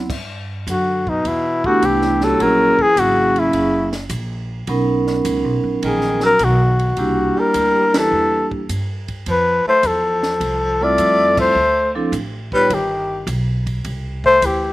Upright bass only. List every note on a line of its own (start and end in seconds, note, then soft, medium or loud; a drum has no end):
0.09 0.65 G2 medium
0.67 1.22 F#2 medium
1.24 1.80 E2 medium
1.82 2.37 C2 medium
2.39 2.76 A#1 medium
2.78 muted upright bass stroke soft
2.96 3.52 G#1 medium
3.53 4.09 F#1 medium
4.10 4.66 A#1 medium
4.68 5.23 B1 medium
5.25 5.44 C#2 loud
5.44 5.63 B1 medium
5.64 5.81 A#1 medium
5.82 6.38 A#1 medium
6.40 6.96 B1 loud
6.97 7.34 C2 medium
7.36 muted upright bass stroke soft
7.54 8.10 D2 medium
8.12 8.67 E2 medium
8.69 9.25 G2 medium
9.27 9.63 F2 medium
9.66 muted upright bass stroke soft
9.83 10.39 E2 medium
10.40 10.96 C2 medium
10.98 11.54 F2 medium
11.55 12.11 D2 medium
12.12 12.68 A1 medium
12.70 13.26 G1 medium
13.27 13.83 B1 loud
13.85 14.40 C2 medium
14.41 14.73 D2 medium